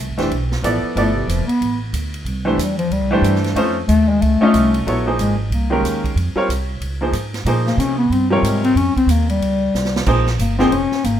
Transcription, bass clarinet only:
0.96 1.14 A3 medium
1.15 1.30 C3 medium
1.29 1.47 F3 medium
1.47 1.78 B3 medium
2.61 2.78 G3 medium
2.78 2.94 F3 medium
2.93 3.44 G3 medium
3.88 4.11 A3 loud
4.09 4.24 G#3 loud
4.22 4.74 A3 medium
5.20 5.38 G#3 medium
5.38 5.54 F3 medium
5.53 6.04 A#3 medium
7.66 7.81 A#3 medium
7.79 7.97 C#4 loud
7.98 8.14 B3 medium
8.12 8.30 C4 loud
8.31 8.45 F3 medium
8.43 8.64 G#3 medium
8.64 8.78 C4 loud
8.77 8.96 C#4 loud
8.96 9.12 C4 loud
9.11 9.29 A#3 medium
9.30 10.04 G3 medium
10.41 10.58 A#3 medium
10.59 10.73 C4 loud
10.72 11.06 C#4 medium
11.05 11.20 A#3 medium

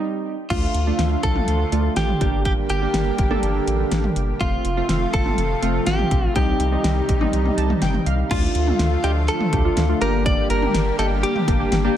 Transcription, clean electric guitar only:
0.50 1.23 F4 medium
1.23 1.93 A4 loud
1.97 2.42 G4 loud
2.45 2.52 G4 loud
2.70 4.12 G4 medium
4.41 5.13 F4 medium
5.14 5.86 A4 loud
5.87 6.35 G4 loud
6.36 8.02 G4 medium
8.31 9.06 F4 medium
9.04 9.11 G4 medium
9.28 10.01 A4 medium
10.02 10.25 A#4 loud
10.26 10.50 D5 loud
10.50 10.96 A#4 loud
10.99 11.05 A4 medium
11.23 11.92 G4 medium

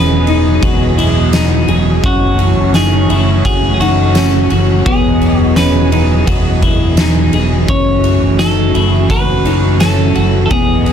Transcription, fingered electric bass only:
0.00 0.58 E1 loud
0.63 1.64 E1 loud
1.68 2.02 E1 medium
2.04 2.54 F#1 medium
2.57 3.07 F#1 loud
3.09 3.43 F#1 loud
3.45 4.47 F#1 loud
4.51 4.84 F#1 medium
4.86 5.36 E1 medium
5.39 6.23 E1 loud
6.27 7.29 E1 loud
7.33 7.67 E1 loud
7.68 8.19 F#1 loud
8.22 8.72 F#1 medium
8.74 9.08 F#1 medium
9.10 10.12 F#1 loud
10.16 10.49 F#1 medium
10.51 10.93 E1 loud

